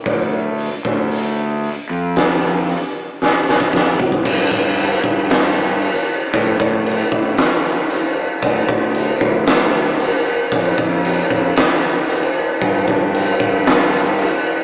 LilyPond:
<<
  \new Staff \with { instrumentName = "Fingered electric bass" } { \clef bass \time 4/4 \key d \dorian \tempo 4 = 115 d,4. d,2 f,8~ | f,4. r4. f,8 r8 | g,8 g,4 g,2 r8 | a,8 a,4 a,8 r2 |
d,8 d,4 d,2 r8 | f,8 f,4 f,8 r2 | g,8 g,4 g,2 r8 | }
  \new DrumStaff \with { instrumentName = "Drums" } \drummode { \time 4/4 <hho bd>4 hho8 bd8 hho4 hho4 | <hho sn>4 hho4 sn8 sn16 bd16 <bd sn>8 tomfh16 bd16 | <cymc bd>8 bd8 cymc8 bd8 <cymc sn>4 cymc4 | <cymc bd>8 bd8 cymc8 bd8 <cymc sn>4 cymc4 |
<cymc bd>8 bd8 cymc8 bd8 <cymc sn>16 sn8. cymc4 | <cymc bd>8 bd8 cymc8 bd8 <cymc sn>16 sn8. cymc4 | <cymc bd>8 bd8 cymc8 bd8 <cymc sn>4 cymc4 | }
>>